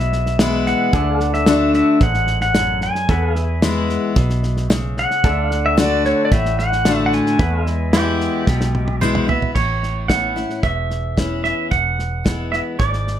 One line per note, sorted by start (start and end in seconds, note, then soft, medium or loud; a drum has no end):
0.00 0.73 B1 medium
0.00 0.88 B2 medium
0.00 0.91 G#4 medium
0.00 0.92 B4 medium
0.00 0.67 E5 medium
0.00 0.92 E5 medium
0.13 snare soft
0.26 snare soft
0.39 0.91 E3 medium
0.39 0.91 G#3 medium
0.39 0.91 B3 loud
0.39 0.92 E4 loud
0.39 snare loud
0.39 hi-hat pedal medium
0.66 1.30 F#5 medium
0.66 snare soft
0.93 1.81 D2 medium
0.93 1.46 D3 medium
0.93 1.14 G#4 medium
0.93 3.08 D5 medium
0.93 1.21 E5 medium
0.93 kick loud
0.93 snare soft
1.14 3.07 A4 medium
1.20 3.08 F#5 medium
1.20 snare soft
1.34 1.71 E5 medium
1.34 snare soft
1.46 1.98 D3 medium
1.46 1.98 A3 medium
1.46 1.99 D4 loud
1.46 1.99 F#4 loud
1.46 snare loud
1.46 hi-hat pedal medium
1.74 2.02 E5 medium
1.74 snare soft
2.00 2.89 A1 medium
2.00 2.52 G#2 medium
2.00 2.40 F#5 medium
2.00 kick loud
2.00 snare soft
2.14 snare soft
2.27 snare soft
2.41 2.83 F#5 medium
2.41 snare soft
2.55 3.06 F#2 medium
2.55 snare loud
2.55 hi-hat pedal medium
2.81 3.59 G#5 medium
2.81 snare soft
2.95 snare soft
3.09 3.97 E2 loud
3.09 4.11 E2 medium
3.09 3.29 A4 medium
3.09 5.23 B4 medium
3.09 3.36 F#5 medium
3.09 kick loud
3.09 snare soft
3.29 5.22 G#4 medium
3.36 5.23 E5 medium
3.36 snare soft
3.62 4.14 E3 medium
3.62 4.14 G#3 loud
3.62 4.15 B3 medium
3.62 4.15 E4 medium
3.62 snare loud
3.62 hi-hat pedal medium
3.89 snare soft
4.16 5.04 B1 medium
4.16 4.67 B2 medium
4.16 kick loud
4.16 snare soft
4.30 snare soft
4.43 snare soft
4.57 snare soft
4.70 5.21 C#3 loud
4.70 snare loud
4.70 hi-hat pedal medium
4.97 5.68 F#5 loud
4.97 snare soft
5.11 snare soft
5.24 6.12 D2 medium
5.24 5.76 D3 medium
5.24 7.38 A4 medium
5.24 7.38 D5 medium
5.24 5.52 E5 medium
5.24 kick loud
5.24 snare soft
5.51 7.39 F#5 medium
5.51 snare soft
5.66 5.79 E5 medium
5.77 6.29 D3 loud
5.77 6.29 A3 medium
5.77 6.30 D4 medium
5.77 6.30 F#4 loud
5.77 6.05 D5 medium
5.77 snare loud
5.77 hi-hat pedal medium
6.05 6.24 C#5 medium
6.05 snare soft
6.25 6.32 D5 medium
6.32 7.19 A1 medium
6.32 7.34 A2 loud
6.32 6.58 E5 medium
6.32 kick loud
6.32 snare soft
6.46 snare soft
6.59 7.05 F#5 loud
6.59 snare soft
6.72 snare soft
6.85 7.37 D3 medium
6.85 7.37 A3 loud
6.85 7.38 D4 loud
6.85 7.38 F#4 loud
6.85 snare loud
6.85 hi-hat pedal medium
7.06 7.13 F#5 medium
7.13 8.98 G#5 loud
7.13 snare soft
7.26 snare soft
7.39 8.27 E2 medium
7.39 8.42 E2 medium
7.39 7.59 A3 medium
7.39 9.53 B4 medium
7.39 7.66 F#5 medium
7.39 kick loud
7.39 snare soft
7.59 9.53 G#3 medium
7.66 9.54 E5 medium
7.66 snare soft
7.93 8.45 E3 medium
7.93 8.45 G#3 medium
7.93 8.45 B3 medium
7.93 8.46 E4 medium
7.93 8.98 G4 loud
7.93 snare loud
7.93 hi-hat pedal medium
8.21 snare soft
8.47 9.35 B1 medium
8.47 9.50 B2 medium
8.47 kick loud
8.47 snare medium
8.61 snare medium
8.75 high tom medium
8.88 high tom medium
9.01 9.27 E3 medium
9.01 9.28 G#3 medium
9.01 9.28 B3 loud
9.01 9.27 E4 loud
9.01 9.28 C5 medium
9.01 hi-hat pedal medium
9.01 mid tom medium
9.15 mid tom medium
9.28 9.55 B3 medium
9.28 9.54 E4 medium
9.28 9.54 E5 medium
9.28 floor tom loud
9.42 floor tom medium
9.55 10.43 A1 medium
9.55 10.58 A2 medium
9.55 10.08 C#5 medium
9.55 kick loud
9.55 snare soft
9.55 crash medium
9.83 snare soft
10.08 10.35 E3 medium
10.08 10.35 B3 soft
10.08 10.36 C#4 medium
10.08 10.35 E4 medium
10.08 10.63 F#5 medium
10.08 kick medium
10.08 snare medium
10.08 hi-hat pedal medium
10.36 10.63 C#4 soft
10.36 10.62 E4 medium
10.36 snare soft
10.50 snare soft
10.63 11.51 E1 medium
10.63 11.66 E2 medium
10.63 11.43 E5 medium
10.63 kick loud
10.63 snare soft
10.91 snare soft
11.17 11.68 E3 soft
11.17 11.69 B3 medium
11.17 11.69 C#4 medium
11.17 11.70 E4 medium
11.17 kick medium
11.17 snare medium
11.17 hi-hat pedal medium
11.44 11.71 E5 medium
11.44 snare soft
11.71 12.60 E1 medium
11.71 12.74 E2 medium
11.71 12.48 F#5 medium
11.71 kick medium
11.71 snare soft
11.99 snare soft
12.24 12.76 E3 medium
12.24 12.77 G#3 medium
12.24 12.77 B3 medium
12.24 12.77 E4 medium
12.24 kick medium
12.24 snare medium
12.24 hi-hat pedal medium
12.52 12.59 E5 medium
12.52 snare soft
12.79 13.20 G#1 medium
12.79 13.20 G#2 medium
12.79 13.20 D5 medium
12.79 kick loud
12.79 snare soft
12.93 snare soft
13.07 snare soft